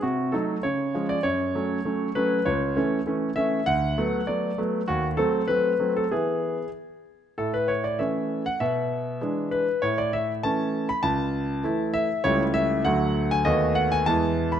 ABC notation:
X:1
M:2/4
L:1/16
Q:1/4=99
K:F#m
V:1 name="Grand piano"
_G2 A2 c3 d | c6 B2 | [K:A] c6 e2 | f4 d2 z2 |
F2 A2 B3 A | G6 z2 | A B c d e3 f | e6 B2 |
c d e2 a3 b | a6 e2 | c2 e2 f3 g | ^d2 f g a3 b |]
V:2 name="Grand piano"
=C,2 [_G,A,_E]2 ^C,2 [^E,^G,C]2 | F,,2 [F,A,C]2 [F,A,C]2 [F,A,C]2 | [K:A] C,,2 [E,A,C]2 [E,A,C]2 [E,A,C]2 | D,,2 [F,A,B,]2 [F,A,B,]2 [F,A,B,]2 |
^D,,2 [F,A,^B,]2 [F,A,B,]2 [F,A,B,]2 | [E,B,]4 z4 | A,,4 [E,A,C]4 | B,,4 [E,G,D]4 |
A,,4 [E,A,C]4 | C,,4 [E,A,E]4 | [C,,=G,A,E]4 [D,,F,A,F]4 | [^D,,A,B,F]4 [E,,G,B,E]4 |]